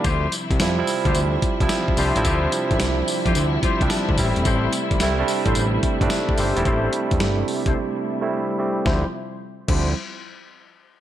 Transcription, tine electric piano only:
X:1
M:4/4
L:1/16
Q:"Swing 16ths" 1/4=109
K:Dm
V:1 name="Tine electric piano"
z4 [F,G,CE] [F,G,CE]4- [F,G,CE] z [F,G,CE]2 z [F,G,CD] [F,G,CE]- | [F,G,CE]4- [F,G,CE] z6 [F,G,CD]2 z [G,A,CE]2- | [G,A,CE]3 z [G,A,CE] [G,A,CD]4- [G,A,CD] z [G,A,CD]2 z [G,A,CG] [G,A,CE]- | [G,A,CE]4- [G,A,CE] z6 [G,A,CE]2 z [G,A,CG]2 |
[F,G,CE] z4 z [F,G,CE]2 z8 |]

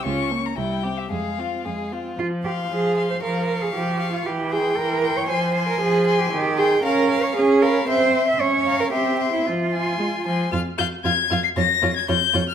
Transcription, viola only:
X:1
M:2/4
L:1/8
Q:1/4=115
K:Fm
V:1 name="Viola"
D B, G, C | A, C A, C | F,2 F,2 | F,2 F,2 |
=E,2 E,2 | F,2 F,2 | E,2 D2 | D2 C2 |
D2 C2 | F,2 A, F, | F F F F | F F F F |]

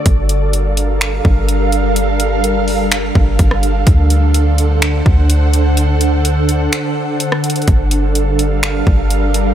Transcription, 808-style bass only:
X:1
M:4/4
L:1/8
Q:1/4=126
K:Gm
V:1 name="808-style bass" clef=bass
G,,,4- G,,, G,,,3- | G,,,4- G,,, G,,, G,,,2 | D,,4- D,, D,,3- | D,,4 z4 |
G,,,4- G,,, G,,,3 |]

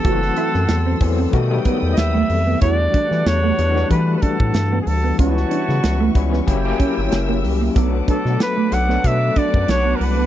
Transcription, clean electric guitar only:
X:1
M:4/4
L:1/16
Q:"Swing 16ths" 1/4=93
K:Bm
V:1 name="Clean electric guitar"
F z E z2 =C z C z2 B, z2 A, z B, | E z D z2 A, z B, z2 D z2 B, z B, | C z D z2 A, z B, z2 C z2 ^A, z A, | B, z D z2 A, z B, z2 D z2 B, z B, |]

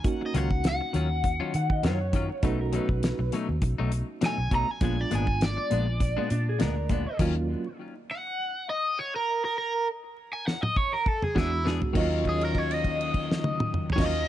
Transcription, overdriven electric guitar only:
X:1
M:4/4
L:1/16
Q:"Swing 16ths" 1/4=101
K:Ebm
V:1 name="Overdriven electric guitar"
g e g2 g12 | z12 a2 b a | a =d a2 d12 | z6 g4 e2 d B2 B |
B2 z3 a g e d B =A _A =E2 z2 | z2 A B d e8 d e2 |]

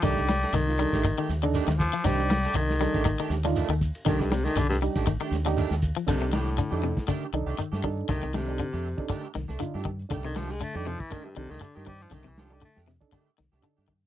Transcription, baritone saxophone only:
X:1
M:4/4
L:1/16
Q:"Swing 16ths" 1/4=119
K:Cdor
V:1 name="Baritone saxophone" clef=bass
G,4 E,6 z4 F,2 | G,4 E,6 z6 | E, G,, C, E, D, G,, z8 z2 | C,2 A,,6 z8 |
E,2 C,6 z8 | z E, F, _A, =A, G, F, =E, _E, G,, C, E, D, E, G, F, | E, =E, F, G, A,2 z8 z2 |]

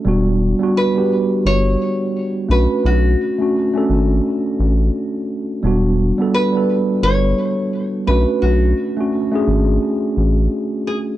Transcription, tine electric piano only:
X:1
M:4/4
L:1/16
Q:"Swing 16ths" 1/4=86
K:Edor
V:1 name="Tine electric piano"
[G,B,DF]2 z [G,B,DF] z [G,B,DG]4- [G,B,DG] z4 [A,CDF]2- | [A,CDF]2 z [A,CDF] z [A,CDA]4- [A,CDA] z6 | [G,B,DF]2 z [G,B,DA] z [G,B,DA]4- [G,B,DA] z4 [A,CDF]2- | [A,CDF]2 z [A,CDF] z [A,CD^G]4- [A,CDG] z6 |]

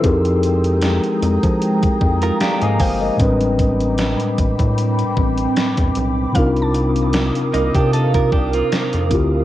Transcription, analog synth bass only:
X:1
M:4/4
L:1/16
Q:"Swing 16ths" 1/4=76
K:C
V:1 name="Analog synth bass" clef=bass
F,,4- F,, z F,, F,3 F,,2 z _A,, G,,,2 | A,,,4- A,,, z A,,, A,,3 A,,,2 z E,, B,,,2 | C,,4- C,, z C,, C,3 C,,2 z F,, D,,2 |]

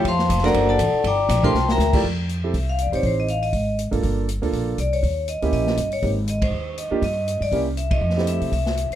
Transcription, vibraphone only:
X:1
M:4/4
L:1/16
Q:"Swing" 1/4=241
K:F
V:1 name="Vibraphone"
[cfac']6 [Bd_gb]4 [Ad^fa]6 | [dgbd']6 [cgac']4 [Begb]4- [Begb] z | z8 e2 f2 d2 _d2 | c2 _e2 f2 e6 z4 |
z12 d2 _d2- | _d4 _e4 e6 d2 | z4 _e2 c6 e4 | _e6 d2 z4 =e2 _e2- |
_e4 =e4 e6 z2 |]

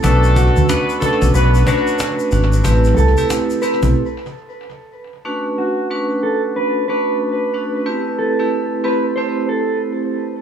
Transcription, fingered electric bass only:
X:1
M:4/4
L:1/16
Q:"Swing 16ths" 1/4=92
K:Bphr
V:1 name="Fingered electric bass" clef=bass
B,,,3 D,, z3 B,,, B,,,2 z4 ^G,,,2 | A,,,2 C,, z4 B,,, z8 | z16 | z16 |]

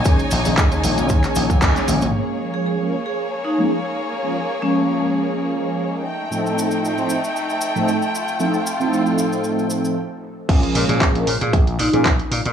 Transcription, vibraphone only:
X:1
M:4/4
L:1/16
Q:"Swing 16ths" 1/4=115
K:Bbdor
V:1 name="Vibraphone"
z16 | z3 A A z2 A z2 E z4 z | z3 D3 z8 z2 | z16 |
z16 | z3 A A z2 A z2 E z4 z |]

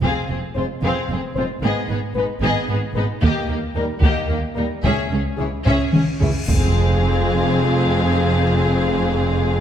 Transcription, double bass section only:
X:1
M:6/8
L:1/8
Q:3/8=75
K:Fm
V:1 name="Double bass section" clef=bass
F,,, F,,, F,,, F,,, F,,, F,,, | A,,, A,,, A,,, A,,, A,,, A,,, | E,, E,, E,, E,, E,, E,, | D,, D,, D,, D,, D,, D,, |
F,,,6- | F,,,6 |]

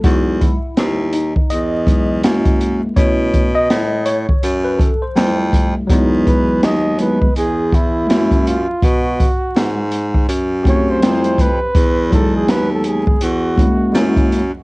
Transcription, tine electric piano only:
X:1
M:4/4
L:1/16
Q:"Swing 16ths" 1/4=82
K:E
V:1 name="Tine electric piano"
F2 E4 D2 d6 z2 | c3 d3 c3 B A =c2 z3 | [F,=G,^G,B,D]6 [F,G,B,E]2 z4 [G,^A,CE]2 z2 | z8 z2 [A,=CE=G]2 [=G,A,CE]2 z2 |
z2 [F,G,B,D]6 z2 [=G,^G,^A,CE]2 [G,A,CE]2 z2 |]
V:2 name="Tine electric piano"
[F,G,D]2 z8 [F,G,D]2 [G,^A,E]4 | [A,CE]2 z8 z2 [=G,A,E]4 | z16 | z16 |
z16 |]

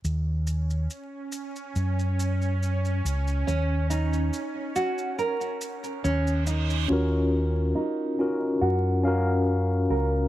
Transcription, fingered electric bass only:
X:1
M:4/4
L:1/8
Q:1/4=70
K:Ebm
V:1 name="Fingered electric bass" clef=bass
E,,2 z2 G,,3 D,, | E,,2 z4 E,,2 | E,,2 z2 G,,3 D,, |]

